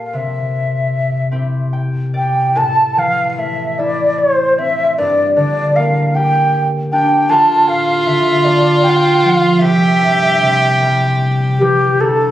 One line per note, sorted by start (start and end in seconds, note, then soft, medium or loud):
0.00 0.17 A#2 soft
0.00 2.18 A#3 soft
0.00 1.32 G4 soft
0.00 1.16 A4 soft
0.06 0.17 F5 soft
0.13 2.61 C3 soft
0.13 1.74 E5 medium
1.32 4.32 C4 soft
1.32 3.79 E4 soft
1.32 3.68 G4 soft
1.73 3.28 G5 soft
2.14 3.98 D5 soft
2.14 2.59 G5 medium
2.56 5.01 A2 medium
2.56 3.00 A5 medium
2.96 5.01 E3 soft
2.96 3.30 F5 medium
3.30 3.40 F5 medium
3.37 5.82 A3 soft
3.37 3.80 E5 medium
3.78 6.40 E4 soft
3.78 4.20 D5 medium
4.19 4.60 C5 medium
4.58 7.58 C4 soft
4.58 4.96 E5 medium
4.97 7.35 G2 medium
4.97 5.33 D5 medium
5.35 7.35 D3 soft
5.35 5.77 D5 medium
5.76 7.73 A#3 soft
5.76 6.17 F5 medium
6.15 8.51 G4 medium
6.15 6.66 G5 medium
6.92 9.73 D4 medium
6.92 7.31 G5 medium
7.29 9.66 D2 medium
7.29 9.62 F4 medium
7.29 7.69 A5 loud
7.67 8.11 A2 soft
7.67 8.08 F5 medium
8.06 9.66 D3 medium
8.06 8.46 E5 medium
8.44 11.78 A3 medium
8.44 8.85 D5 medium
8.83 8.91 G5 medium
8.89 8.97 F5 medium
8.96 9.23 G5 medium
9.21 9.66 F3 medium
9.21 9.60 F5 medium
9.59 12.06 C2 medium
9.59 11.60 G4 loud
9.59 11.18 E5 medium
10.00 10.44 G2 soft
10.42 12.06 C3 soft
10.81 12.06 G3 soft
11.59 12.06 E3 soft
11.59 12.02 G4 medium
12.00 12.31 D2 medium
12.00 12.31 A4 medium